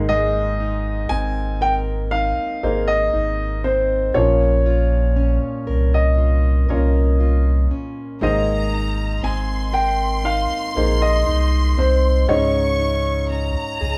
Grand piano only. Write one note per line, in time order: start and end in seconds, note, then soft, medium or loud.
0.09 1.14 D#5 loud
1.09 1.62 G#5 loud
1.62 1.73 G5 loud
2.11 2.90 F5 loud
2.88 3.60 D#5 loud
3.64 4.17 C5 medium
4.14 5.98 C#5 medium
5.94 7.68 D#5 medium
8.23 9.27 D#5 medium
9.24 9.76 G#5 loud
9.74 10.27 G5 medium
10.25 11.04 F5 medium
11.02 11.81 D#5 medium
11.79 12.31 C5 medium
12.29 13.98 C#5 medium